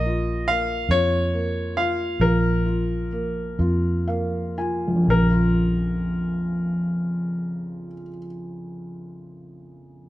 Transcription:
0.00 0.85 A#1 loud
0.00 0.47 A#3 medium
0.00 0.50 D#5 loud
0.06 0.89 F4 medium
0.48 1.31 A#3 medium
0.48 0.91 F5 loud
0.89 2.15 F2 medium
0.89 1.75 F4 medium
0.89 1.79 C#5 loud
1.33 3.07 A#3 medium
1.77 2.65 F4 medium
1.77 2.22 F5 medium
2.20 3.54 A#1 loud
2.20 5.05 F3 medium
2.20 4.53 A#4 medium
2.66 3.57 F4 soft
3.12 4.06 A#3 medium
3.59 5.05 F2 medium
3.59 4.56 F4 medium
4.07 5.06 A#3 medium
4.07 4.54 F5 medium
4.58 5.07 F4 medium
4.58 5.05 G#5 medium
4.88 7.85 A#1 medium
4.96 7.93 F2 soft
5.04 8.05 A#1 medium
5.04 8.01 C#3 soft
5.10 8.10 F3 medium
5.10 8.07 A#4 medium
5.21 8.18 A#3 soft
5.30 8.27 F4 medium

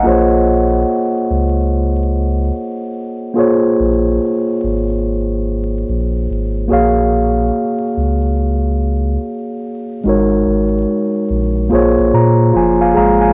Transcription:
0.00 3.33 A#3 medium
0.00 0.30 D#5 medium
0.00 0.29 F#5 medium
0.04 0.84 A#1 loud
0.04 3.34 F4 medium
0.04 3.34 G#4 medium
0.04 3.35 C5 medium
0.08 3.36 C#5 medium
1.30 2.51 C#2 medium
3.34 6.65 A#3 medium
3.34 6.66 F4 medium
3.34 6.67 G#4 medium
3.38 6.67 C5 medium
3.38 6.68 C#5 medium
3.80 4.19 A#1 medium
4.63 5.84 G#1 medium
5.89 6.27 A#1 medium
6.30 6.69 G#1 medium
6.68 7.51 A#1 loud
6.68 9.99 A#3 medium
6.68 10.00 F#4 medium
6.68 10.00 G#4 medium
6.68 10.01 C#5 medium
6.73 10.02 F5 medium
7.97 9.17 C#2 medium
10.04 10.44 G#1 loud
10.04 11.68 G#3 medium
10.04 11.68 D#4 medium
10.04 11.69 F#4 medium
10.08 11.70 A#4 medium
10.08 11.70 C#5 medium
10.47 10.86 G#1 medium
11.30 11.69 A#1 loud
11.69 11.96 A#1 medium
11.69 13.33 A#3 medium
11.69 12.52 F4 medium
11.69 12.93 G#4 medium
11.69 13.33 C5 medium
11.74 13.33 C#5 medium
11.98 12.12 A#1 medium
12.13 12.52 A#2 loud
12.13 12.52 A#5 medium
12.54 12.94 F#1 medium
12.54 12.94 F3 medium
12.54 12.97 F4 medium
12.54 12.80 G#5 medium
12.81 12.96 F5 medium
12.81 12.96 G#5 medium
12.94 13.33 G#1 medium
12.94 13.33 G#3 medium
12.94 13.33 G#4 medium
12.94 13.21 F5 medium
12.94 13.22 A#5 medium
13.21 13.33 F5 medium
13.21 13.33 G#5 medium

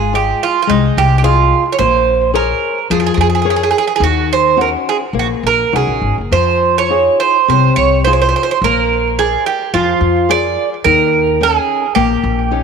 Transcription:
0.00 0.31 G#1 medium
0.00 0.12 G#3 medium
0.00 0.15 G#4 medium
0.13 0.58 F4 soft
0.13 0.43 G4 medium
0.13 0.58 G#4 soft
0.13 0.58 D#5 soft
0.43 0.61 F4 medium
0.62 0.70 F4 medium
0.67 0.88 C2 medium
0.67 1.22 G#3 medium
0.67 0.98 D#4 medium
0.97 1.51 C2 loud
0.97 1.17 G4 medium
1.18 1.24 G4 medium
1.22 1.67 F4 soft
1.22 1.63 F4 medium
1.22 1.68 G#4 soft
1.22 1.68 D#5 medium
1.72 1.78 C#5 medium
1.79 2.51 A#1 medium
1.79 2.32 A#3 medium
1.79 2.30 C5 medium
2.33 2.79 G#4 medium
2.33 2.79 A#4 soft
2.33 2.87 A#4 medium
2.33 2.79 C#5 medium
2.90 3.08 F2 medium
2.90 3.44 F3 medium
2.90 2.97 G#4 medium
3.00 3.05 G#4 medium
3.06 3.12 G#4 medium
3.14 3.72 F2 loud
3.14 3.20 G#4 medium
3.21 3.27 G#4 medium
3.30 3.34 G#4 medium
3.35 3.41 G#4 medium
3.42 3.48 G#4 medium
3.42 3.90 G#4 medium
3.42 3.90 A#4 soft
3.42 3.90 C#5 medium
3.50 3.55 G#4 medium
3.56 3.62 G#4 medium
3.63 3.69 G#4 medium
3.71 3.77 G#4 medium
3.78 3.84 G#4 medium
3.87 3.92 G#4 medium
3.96 4.02 G#4 medium
4.00 4.74 D#2 loud
4.00 4.55 D#3 medium
4.00 4.31 F#4 medium
4.33 4.60 C5 medium
4.57 5.03 C#4 soft
4.57 5.03 D#4 soft
4.57 5.03 F#4 medium
4.61 4.68 A#4 medium
4.89 4.96 G#4 medium
5.13 5.33 A#1 medium
5.13 5.71 A#3 medium
5.19 5.26 F#4 medium
5.43 5.62 A#1 medium
5.43 5.75 A#4 medium
5.72 5.86 C2 medium
5.72 6.20 C#4 soft
5.72 6.20 D#4 soft
5.72 6.20 F#4 soft
5.72 6.15 G#4 medium
5.87 6.01 A#1 medium
6.02 6.15 G#1 medium
6.18 6.31 F#1 medium
6.31 7.07 F2 medium
6.31 6.89 F3 medium
6.31 6.77 C5 medium
6.78 7.19 C#5 medium
6.90 7.36 D#4 soft
6.90 7.36 F4 soft
6.90 7.37 G#4 soft
7.20 7.48 C5 medium
7.48 7.67 C2 medium
7.48 8.04 C3 medium
7.48 7.76 C5 medium
7.76 8.32 C2 medium
7.76 8.04 C#5 medium
8.04 8.51 D#4 soft
8.04 8.51 F4 soft
8.04 8.51 G#4 soft
8.04 8.12 C5 medium
8.13 8.21 C5 medium
8.22 8.27 C5 medium
8.29 8.35 C5 medium
8.36 8.42 C5 medium
8.43 8.50 C5 medium
8.51 8.58 C5 medium
8.62 9.34 A#1 medium
8.62 9.17 A#3 medium
8.62 9.20 A#4 medium
9.19 9.46 G#4 medium
9.19 9.63 G#4 soft
9.19 9.63 A#4 soft
9.19 9.63 D5 soft
9.46 9.72 G4 medium
9.74 9.91 F2 medium
9.74 10.27 F3 medium
9.74 10.30 F4 medium
10.01 10.55 F2 medium
10.29 10.73 G#4 soft
10.29 10.73 A#4 soft
10.29 10.74 D5 soft
10.29 10.68 D5 loud
10.84 11.57 D#2 loud
10.84 11.38 D#3 medium
10.84 11.42 A#4 medium
11.41 11.84 C#4 soft
11.41 11.85 D#4 soft
11.41 11.95 G#4 medium
11.41 11.85 G5 soft
11.95 12.14 A#1 medium
11.95 12.50 A#3 medium
11.95 12.63 G4 medium
12.23 12.63 A#1 medium
12.51 12.63 C#4 soft
12.51 12.63 D#4 soft
12.51 12.63 G4 medium

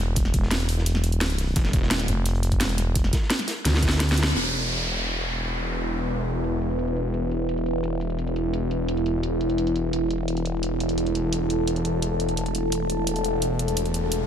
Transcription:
0.00 0.32 E1 loud
0.16 kick loud
0.16 closed hi-hat medium
0.25 snare soft
0.34 1.55 E1 loud
0.34 kick loud
0.34 closed hi-hat medium
0.42 snare soft
0.51 snare loud
0.51 closed hi-hat medium
0.60 closed hi-hat soft
0.69 closed hi-hat medium
0.69 open hi-hat medium
0.78 snare medium
0.86 closed hi-hat medium
0.95 snare medium
1.04 closed hi-hat medium
1.12 closed hi-hat soft
1.21 snare loud
1.21 closed hi-hat medium
1.30 closed hi-hat soft
1.38 snare soft
1.38 closed hi-hat medium
1.38 open hi-hat medium
1.56 2.07 E1 loud
1.56 kick loud
1.56 closed hi-hat loud
1.56 closed hi-hat medium
1.65 snare soft
1.73 kick loud
1.73 closed hi-hat medium
1.82 snare soft
1.90 snare loud
1.90 closed hi-hat loud
1.90 closed hi-hat medium
1.99 snare medium
1.99 closed hi-hat soft
2.08 2.59 F1 loud
2.08 closed hi-hat medium
2.26 closed hi-hat loud
2.26 closed hi-hat medium
2.35 closed hi-hat soft
2.43 closed hi-hat medium
2.51 kick medium
2.51 closed hi-hat soft
2.60 3.12 E1 loud
2.60 snare loud
2.60 closed hi-hat loud
2.69 closed hi-hat soft
2.78 snare soft
2.78 closed hi-hat medium
2.95 kick loud
2.95 closed hi-hat loud
2.95 closed hi-hat medium
3.04 snare soft
3.13 kick loud
3.13 snare loud
3.13 closed hi-hat medium
3.22 snare soft
3.30 snare loud
3.30 closed hi-hat loud
3.30 closed hi-hat medium
3.39 snare medium
3.39 closed hi-hat soft
3.48 snare loud
3.48 closed hi-hat medium
3.48 open hi-hat medium
3.56 closed hi-hat soft
3.65 4.34 D2 loud
3.65 snare medium
3.65 closed hi-hat loud
3.65 closed hi-hat medium
3.74 snare loud
3.74 closed hi-hat medium
3.77 snare medium
3.82 kick medium
3.82 snare medium
3.82 closed hi-hat medium
3.87 snare medium
3.87 closed hi-hat medium
3.91 snare loud
3.91 closed hi-hat soft
3.91 closed hi-hat medium
3.96 snare medium
3.96 closed hi-hat medium
4.00 snare medium
4.00 snare loud
4.00 closed hi-hat loud
4.00 closed hi-hat medium
4.09 snare loud
4.09 closed hi-hat soft
4.17 snare loud
4.17 closed hi-hat medium
4.23 snare loud
4.23 closed hi-hat medium
4.26 snare loud
4.35 9.91 E1 medium
4.35 14.27 E4 medium
4.35 9.89 B4 medium
4.35 9.91 E5 medium
4.35 downlifter medium
6.09 closed hi-hat medium
6.18 closed hi-hat soft
6.27 closed hi-hat medium
6.44 closed hi-hat medium
6.62 closed hi-hat medium
6.70 closed hi-hat soft
6.79 closed hi-hat medium
6.88 closed hi-hat soft
6.97 closed hi-hat medium
7.14 closed hi-hat medium
7.31 closed hi-hat medium
7.49 closed hi-hat medium
7.58 closed hi-hat soft
7.66 closed hi-hat medium
7.84 closed hi-hat medium
8.01 closed hi-hat medium
8.10 closed hi-hat soft
8.19 closed hi-hat medium
8.27 closed hi-hat soft
8.36 closed hi-hat medium
8.54 closed hi-hat medium
8.71 closed hi-hat medium
8.88 closed hi-hat medium
8.97 closed hi-hat soft
9.06 closed hi-hat medium
9.23 closed hi-hat medium
9.41 closed hi-hat medium
9.50 closed hi-hat soft
9.58 closed hi-hat medium
9.67 closed hi-hat soft
9.76 closed hi-hat medium
9.93 14.27 E1 medium
9.93 14.27 A4 medium
9.93 14.27 A5 medium
9.93 closed hi-hat medium
10.11 closed hi-hat medium
10.28 closed hi-hat medium
10.37 closed hi-hat soft
10.46 closed hi-hat medium
10.63 closed hi-hat medium
10.80 closed hi-hat medium
10.89 closed hi-hat soft
10.98 closed hi-hat medium
11.06 closed hi-hat soft
11.15 closed hi-hat medium
11.33 closed hi-hat medium
11.50 closed hi-hat medium
11.67 closed hi-hat medium
11.76 closed hi-hat soft
11.85 closed hi-hat medium
12.02 closed hi-hat medium
12.20 closed hi-hat medium
12.29 closed hi-hat soft
12.37 closed hi-hat medium
12.46 closed hi-hat soft
12.55 closed hi-hat medium
12.72 closed hi-hat medium
12.72 riser medium
12.90 closed hi-hat medium
13.07 closed hi-hat medium
13.16 closed hi-hat soft
13.24 closed hi-hat medium
13.42 closed hi-hat medium
13.59 closed hi-hat medium
13.68 closed hi-hat soft
13.77 closed hi-hat medium
13.86 closed hi-hat soft
13.94 closed hi-hat medium
14.12 closed hi-hat medium

